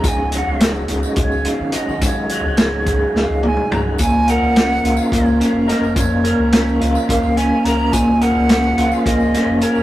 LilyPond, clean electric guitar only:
\new Staff \with { instrumentName = "Clean electric guitar" } { \clef bass \time 7/8 \key bes \minor \tempo 4 = 107 <des, aes, des ges>8 ges8 aes,8 des8 des,8 aes,8 ges8 | des,8 ges8 aes,8 des8 des,8 aes,8 ges8 | bes,8 bes'8 des'8 f'8 bes8 des'8 bes'8 | bes,8 bes'8 des'8 f'8 bes8 des'8 bes'8 |
bes,8 bes'8 des'8 f'8 bes8 des'8 bes'8 | }